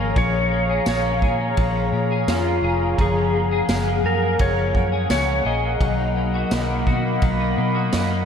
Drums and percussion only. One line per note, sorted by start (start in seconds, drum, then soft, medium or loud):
0.16 kick loud
0.16 ride medium
0.86 snare loud
0.86 ride medium
0.86 tambourine medium
1.22 kick medium
1.57 kick loud
1.57 ride medium
2.28 snare medium
2.28 ride medium
2.28 tambourine medium
2.98 kick loud
2.98 ride medium
3.69 snare loud
3.69 ride medium
3.69 tambourine medium
4.39 kick loud
4.39 ride medium
4.75 kick medium
5.10 snare medium
5.10 ride medium
5.10 tambourine medium
5.81 kick loud
5.81 ride medium
6.51 snare loud
6.51 ride medium
6.51 tambourine medium
6.87 kick medium
7.22 kick loud
7.22 ride medium
7.92 snare medium
7.92 ride medium
7.92 tambourine medium